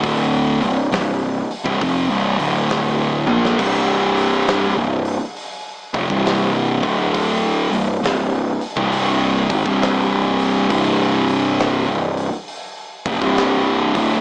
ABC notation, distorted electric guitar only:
X:1
M:4/4
L:1/16
Q:"Swing" 1/4=68
K:Dphr
V:1 name="Distorted electric guitar" clef=bass
[D,,A,,D,]2 [C,,G,,]2 [C,,G,,]2 z [C,,G,,] [F,,C,] [C,,G,,] [D,,A,,D,]4 [B,,F,B,]2 | [C,,G,,C,]4- [C,,G,,C,] [C,,G,,]2 z3 [F,,C,] [C,,G,,C,]3 [D,,A,,D,]2- | [D,,A,,D,]2 [C,,G,,]2 [C,,G,,]2 z [C,,G,,C,]3 [_A,,E,] [C,,G,,C,]4- [C,,G,,C,] | [C,,G,,C,]4- [C,,G,,C,] [C,,G,,]2 z3 [F,,C,] [C,,G,,C,]3 [D,,A,,D,]2 |]